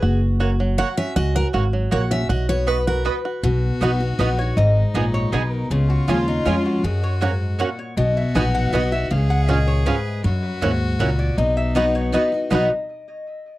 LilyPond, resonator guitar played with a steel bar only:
\new Staff \with { instrumentName = "Resonator guitar played with a steel bar" } { \time 3/4 \key b \major \tempo 4 = 159 r2. | r2. | r2. | r2 b'8 cis''8 |
dis''4. cis''8 b'8 ais'8 | gis'8 fis'8 eis'8 dis'8 eis'8 fis'8 | gis'8 cis''8 r4 fis''8 cis''8 | dis''8 e''8 gis''8 fis''8 dis''8 e''8 |
eis''8 fis''8 dis''8 cis''8 b'4 | r2 r8 d''8 | dis''8 e''8 dis''8 cis''8 dis''8. r16 | dis''8 r2 r8 | }